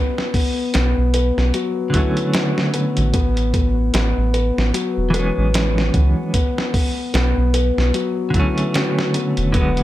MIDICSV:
0, 0, Header, 1, 5, 480
1, 0, Start_track
1, 0, Tempo, 800000
1, 1884, Time_signature, 4, 2, 24, 8
1, 5898, End_track
2, 0, Start_track
2, 0, Title_t, "Felt piano"
2, 0, Program_c, 0, 0
2, 0, Note_on_c, 0, 59, 79
2, 87, Control_c, 0, 64, 127
2, 194, Note_off_c, 0, 59, 0
2, 205, Note_on_c, 0, 59, 74
2, 435, Note_off_c, 0, 59, 0
2, 444, Note_on_c, 0, 59, 92
2, 674, Note_off_c, 0, 59, 0
2, 684, Note_on_c, 0, 71, 66
2, 914, Note_off_c, 0, 71, 0
2, 923, Note_on_c, 0, 54, 89
2, 1154, Note_off_c, 0, 54, 0
2, 1164, Note_on_c, 0, 64, 70
2, 1316, Note_off_c, 0, 64, 0
2, 1404, Note_on_c, 0, 66, 75
2, 1634, Note_off_c, 0, 66, 0
2, 1644, Note_on_c, 0, 59, 65
2, 1797, Note_off_c, 0, 59, 0
2, 1883, Note_on_c, 0, 59, 95
2, 1892, Control_c, 0, 64, 0
2, 1986, Control_c, 0, 64, 127
2, 2036, Note_off_c, 0, 59, 0
2, 2124, Note_on_c, 0, 59, 65
2, 2354, Note_off_c, 0, 59, 0
2, 2363, Note_on_c, 0, 59, 97
2, 2593, Note_off_c, 0, 59, 0
2, 2602, Note_on_c, 0, 71, 73
2, 2833, Note_off_c, 0, 71, 0
2, 2841, Note_on_c, 0, 54, 88
2, 3072, Note_off_c, 0, 54, 0
2, 3084, Note_on_c, 0, 71, 89
2, 3314, Note_off_c, 0, 71, 0
2, 3323, Note_on_c, 0, 59, 71
2, 3554, Note_off_c, 0, 59, 0
2, 3563, Note_on_c, 0, 59, 67
2, 3716, Note_off_c, 0, 59, 0
2, 3805, Note_on_c, 0, 59, 77
2, 3812, Control_c, 0, 64, 0
2, 3930, Control_c, 0, 64, 127
2, 4033, Note_off_c, 0, 59, 0
2, 4042, Note_on_c, 0, 59, 71
2, 4273, Note_off_c, 0, 59, 0
2, 4283, Note_on_c, 0, 59, 96
2, 4513, Note_off_c, 0, 59, 0
2, 4523, Note_on_c, 0, 71, 76
2, 4754, Note_off_c, 0, 71, 0
2, 4764, Note_on_c, 0, 54, 91
2, 4994, Note_off_c, 0, 54, 0
2, 5006, Note_on_c, 0, 64, 66
2, 5157, Note_off_c, 0, 64, 0
2, 5245, Note_on_c, 0, 66, 73
2, 5475, Note_off_c, 0, 66, 0
2, 5486, Note_on_c, 0, 59, 64
2, 5637, Note_off_c, 0, 59, 0
2, 5727, Note_on_c, 0, 59, 100
2, 5733, Control_c, 0, 64, 0
2, 5827, Control_c, 0, 64, 127
2, 5878, Note_off_c, 0, 59, 0
2, 5898, End_track
3, 0, Start_track
3, 0, Title_t, "Clean electric guitar"
3, 0, Program_c, 1, 27
3, 1139, Note_on_c, 1, 50, 73
3, 1157, Note_on_c, 1, 54, 63
3, 1174, Note_on_c, 1, 57, 63
3, 1192, Note_on_c, 1, 61, 74
3, 1860, Note_off_c, 1, 50, 0
3, 1869, Note_off_c, 1, 54, 0
3, 1877, Note_off_c, 1, 57, 0
3, 1886, Note_off_c, 1, 61, 0
3, 3061, Note_on_c, 1, 52, 72
3, 3080, Note_on_c, 1, 56, 67
3, 3097, Note_on_c, 1, 59, 68
3, 3115, Note_on_c, 1, 61, 79
3, 3780, Note_off_c, 1, 52, 0
3, 3790, Note_off_c, 1, 56, 0
3, 3798, Note_off_c, 1, 59, 0
3, 3808, Note_off_c, 1, 61, 0
3, 4982, Note_on_c, 1, 50, 73
3, 5001, Note_on_c, 1, 54, 66
3, 5018, Note_on_c, 1, 57, 70
3, 5036, Note_on_c, 1, 61, 81
3, 5701, Note_off_c, 1, 50, 0
3, 5711, Note_off_c, 1, 54, 0
3, 5714, Note_on_c, 1, 50, 84
3, 5719, Note_off_c, 1, 57, 0
3, 5724, Note_on_c, 1, 54, 77
3, 5728, Note_off_c, 1, 61, 0
3, 5733, Note_on_c, 1, 56, 75
3, 5741, Note_on_c, 1, 59, 91
3, 5897, Note_off_c, 1, 50, 0
3, 5898, Note_off_c, 1, 54, 0
3, 5898, Note_off_c, 1, 56, 0
3, 5898, Note_off_c, 1, 59, 0
3, 5898, End_track
4, 0, Start_track
4, 0, Title_t, "Sub bass"
4, 0, Program_c, 2, 38
4, 448, Note_on_c, 2, 35, 92
4, 568, Note_off_c, 2, 35, 0
4, 585, Note_on_c, 2, 35, 86
4, 790, Note_off_c, 2, 35, 0
4, 823, Note_on_c, 2, 35, 78
4, 912, Note_off_c, 2, 35, 0
4, 1784, Note_on_c, 2, 33, 90
4, 2346, Note_off_c, 2, 33, 0
4, 2363, Note_on_c, 2, 33, 95
4, 2485, Note_off_c, 2, 33, 0
4, 2503, Note_on_c, 2, 33, 91
4, 2710, Note_off_c, 2, 33, 0
4, 2745, Note_on_c, 2, 33, 79
4, 2833, Note_off_c, 2, 33, 0
4, 2982, Note_on_c, 2, 28, 81
4, 3189, Note_off_c, 2, 28, 0
4, 3225, Note_on_c, 2, 33, 82
4, 3546, Note_off_c, 2, 33, 0
4, 3564, Note_on_c, 2, 37, 89
4, 3686, Note_off_c, 2, 37, 0
4, 4283, Note_on_c, 2, 35, 98
4, 4405, Note_off_c, 2, 35, 0
4, 4423, Note_on_c, 2, 35, 93
4, 4630, Note_off_c, 2, 35, 0
4, 4664, Note_on_c, 2, 35, 78
4, 4753, Note_off_c, 2, 35, 0
4, 5624, Note_on_c, 2, 28, 89
4, 5898, Note_off_c, 2, 28, 0
4, 5898, End_track
5, 0, Start_track
5, 0, Title_t, "Drums"
5, 110, Note_on_c, 9, 38, 49
5, 170, Note_off_c, 9, 38, 0
5, 204, Note_on_c, 9, 36, 93
5, 204, Note_on_c, 9, 46, 73
5, 264, Note_off_c, 9, 36, 0
5, 264, Note_off_c, 9, 46, 0
5, 443, Note_on_c, 9, 42, 87
5, 449, Note_on_c, 9, 38, 103
5, 503, Note_off_c, 9, 42, 0
5, 509, Note_off_c, 9, 38, 0
5, 683, Note_on_c, 9, 42, 69
5, 743, Note_off_c, 9, 42, 0
5, 828, Note_on_c, 9, 38, 39
5, 888, Note_off_c, 9, 38, 0
5, 923, Note_on_c, 9, 42, 80
5, 983, Note_off_c, 9, 42, 0
5, 1163, Note_on_c, 9, 36, 82
5, 1163, Note_on_c, 9, 42, 65
5, 1223, Note_off_c, 9, 36, 0
5, 1223, Note_off_c, 9, 42, 0
5, 1301, Note_on_c, 9, 42, 40
5, 1361, Note_off_c, 9, 42, 0
5, 1401, Note_on_c, 9, 42, 83
5, 1408, Note_on_c, 9, 38, 105
5, 1461, Note_off_c, 9, 42, 0
5, 1468, Note_off_c, 9, 38, 0
5, 1547, Note_on_c, 9, 38, 51
5, 1607, Note_off_c, 9, 38, 0
5, 1642, Note_on_c, 9, 42, 67
5, 1702, Note_off_c, 9, 42, 0
5, 1780, Note_on_c, 9, 42, 43
5, 1840, Note_off_c, 9, 42, 0
5, 1882, Note_on_c, 9, 36, 97
5, 1882, Note_on_c, 9, 42, 81
5, 1942, Note_off_c, 9, 36, 0
5, 1942, Note_off_c, 9, 42, 0
5, 2022, Note_on_c, 9, 42, 40
5, 2082, Note_off_c, 9, 42, 0
5, 2123, Note_on_c, 9, 36, 88
5, 2123, Note_on_c, 9, 42, 63
5, 2183, Note_off_c, 9, 36, 0
5, 2183, Note_off_c, 9, 42, 0
5, 2362, Note_on_c, 9, 42, 81
5, 2369, Note_on_c, 9, 38, 104
5, 2422, Note_off_c, 9, 42, 0
5, 2429, Note_off_c, 9, 38, 0
5, 2604, Note_on_c, 9, 42, 68
5, 2664, Note_off_c, 9, 42, 0
5, 2750, Note_on_c, 9, 38, 47
5, 2810, Note_off_c, 9, 38, 0
5, 2846, Note_on_c, 9, 42, 85
5, 2906, Note_off_c, 9, 42, 0
5, 3084, Note_on_c, 9, 42, 60
5, 3144, Note_off_c, 9, 42, 0
5, 3326, Note_on_c, 9, 42, 79
5, 3332, Note_on_c, 9, 38, 107
5, 3386, Note_off_c, 9, 42, 0
5, 3392, Note_off_c, 9, 38, 0
5, 3469, Note_on_c, 9, 38, 49
5, 3529, Note_off_c, 9, 38, 0
5, 3563, Note_on_c, 9, 36, 82
5, 3563, Note_on_c, 9, 42, 61
5, 3623, Note_off_c, 9, 36, 0
5, 3623, Note_off_c, 9, 42, 0
5, 3803, Note_on_c, 9, 36, 98
5, 3803, Note_on_c, 9, 42, 81
5, 3863, Note_off_c, 9, 36, 0
5, 3863, Note_off_c, 9, 42, 0
5, 3950, Note_on_c, 9, 38, 53
5, 4010, Note_off_c, 9, 38, 0
5, 4044, Note_on_c, 9, 36, 91
5, 4044, Note_on_c, 9, 46, 80
5, 4104, Note_off_c, 9, 36, 0
5, 4104, Note_off_c, 9, 46, 0
5, 4284, Note_on_c, 9, 42, 81
5, 4291, Note_on_c, 9, 38, 111
5, 4344, Note_off_c, 9, 42, 0
5, 4351, Note_off_c, 9, 38, 0
5, 4524, Note_on_c, 9, 42, 69
5, 4584, Note_off_c, 9, 42, 0
5, 4670, Note_on_c, 9, 38, 41
5, 4730, Note_off_c, 9, 38, 0
5, 4766, Note_on_c, 9, 42, 88
5, 4826, Note_off_c, 9, 42, 0
5, 5005, Note_on_c, 9, 36, 91
5, 5005, Note_on_c, 9, 42, 60
5, 5065, Note_off_c, 9, 36, 0
5, 5065, Note_off_c, 9, 42, 0
5, 5146, Note_on_c, 9, 42, 40
5, 5206, Note_off_c, 9, 42, 0
5, 5246, Note_on_c, 9, 42, 77
5, 5253, Note_on_c, 9, 38, 107
5, 5306, Note_off_c, 9, 42, 0
5, 5313, Note_off_c, 9, 38, 0
5, 5391, Note_on_c, 9, 38, 54
5, 5451, Note_off_c, 9, 38, 0
5, 5485, Note_on_c, 9, 42, 67
5, 5545, Note_off_c, 9, 42, 0
5, 5623, Note_on_c, 9, 42, 40
5, 5683, Note_off_c, 9, 42, 0
5, 5724, Note_on_c, 9, 36, 97
5, 5724, Note_on_c, 9, 42, 83
5, 5784, Note_off_c, 9, 36, 0
5, 5784, Note_off_c, 9, 42, 0
5, 5863, Note_on_c, 9, 42, 37
5, 5898, Note_off_c, 9, 42, 0
5, 5898, End_track
0, 0, End_of_file